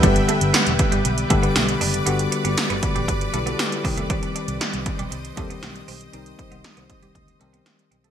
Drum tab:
HH |xxxxxxxxxxxxxxox|xxxxxxxxxxxxxxox|xxxxxxxxxxxxxxox|xxxxxxxxxxxxxxxx|
TB |----x-------x---|----x-------x---|----------------|----------------|
SD |----o-------o---|----o-------o---|----o-------o---|----o-------o---|
BD |o-----o---o-----|------o-o-----o-|o-----o---o-----|--o---o-o-------|